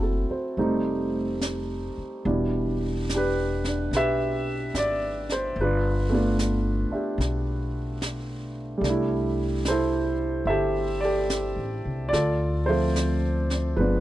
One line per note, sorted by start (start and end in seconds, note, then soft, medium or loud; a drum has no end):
0.00 0.25 F#1 medium
0.00 0.53 F#3 soft
0.00 0.55 A3 soft
0.00 0.57 C4 soft
0.00 0.55 E4 soft
0.00 0.26 F#4 soft
0.00 0.03 A4 medium
0.00 0.45 A4 soft
0.30 0.73 C5 soft
0.30 muted upright bass stroke soft
0.57 1.93 F1 medium
0.57 2.24 G3 soft
0.57 2.25 A3 soft
0.57 2.25 C4 soft
0.57 2.25 D#4 medium
0.57 brush sweep soft
1.41 snare soft
1.41 hi-hat pedal soft
1.98 muted upright bass stroke soft
2.25 3.87 E1 medium
2.25 5.57 B2 soft
2.25 5.56 G3 soft
2.25 3.13 D4 soft
2.25 5.57 E4 soft
2.25 brush sweep soft
3.09 snare soft
3.09 hi-hat pedal soft
3.14 3.65 D4 soft
3.14 3.94 G4 soft
3.14 3.92 B4 medium
3.65 5.58 D4 soft
3.65 snare soft
3.91 4.70 B1 medium
3.91 5.54 B4 medium
3.91 brush sweep soft
3.91 snare soft
3.96 5.54 G4 medium
3.96 4.72 E5 medium
4.74 5.52 G#1 medium
4.74 5.27 D5 medium
4.74 snare soft
4.74 hi-hat pedal soft
5.29 5.58 C5 medium
5.29 snare soft
5.56 6.88 G1 medium
5.56 brush sweep soft
5.61 6.11 D4 soft
5.61 6.13 F4 medium
5.61 8.00 B4 medium
6.09 8.80 A3 medium
6.09 8.83 B3 soft
6.09 6.90 D4 soft
6.15 8.85 F4 medium
6.39 snare soft
6.39 hi-hat pedal soft
6.91 8.83 D4 soft
6.91 8.84 G4 soft
6.91 8.83 E5 soft
6.91 muted upright bass stroke soft
7.18 8.78 B1 medium
7.18 brush sweep soft
7.18 snare soft
8.02 snare soft
8.02 hi-hat pedal soft
8.78 10.42 C2 medium
8.78 12.09 G3 medium
8.78 12.11 A3 soft
8.84 12.13 D4 soft
8.84 brush sweep soft
8.84 snare soft
8.89 9.69 E4 medium
9.65 10.51 C5 medium
9.65 snare soft
9.65 hi-hat pedal soft
9.70 11.28 E4 medium
9.70 10.48 A4 medium
10.45 11.52 G1 medium
10.45 11.03 E5 medium
10.45 brush sweep soft
10.50 11.03 G4 medium
10.50 11.03 A4 medium
11.01 12.07 D5 medium
11.05 12.09 G4 medium
11.05 12.09 A4 medium
11.30 snare soft
11.30 hi-hat pedal soft
11.56 11.82 A1 soft
11.85 12.10 C2 medium
12.09 13.73 D2 medium
12.09 12.61 D5 medium
12.13 12.69 F4 medium
12.13 12.68 A4 medium
12.13 brush sweep soft
12.13 snare soft
12.66 13.75 F3 soft
12.66 13.78 A3 soft
12.66 13.78 C4 soft
12.66 13.74 A4 medium
12.66 13.80 C5 medium
12.66 13.78 E5 soft
12.71 13.75 F4 soft
12.96 snare soft
12.96 hi-hat pedal medium
13.50 snare soft
13.76 14.00 G1 medium
13.76 14.00 F3 soft
13.76 14.00 G#3 soft
13.76 14.00 B3 soft
13.76 14.00 D4 soft
13.76 14.00 F4 soft
13.76 14.00 B4 medium
13.76 brush sweep soft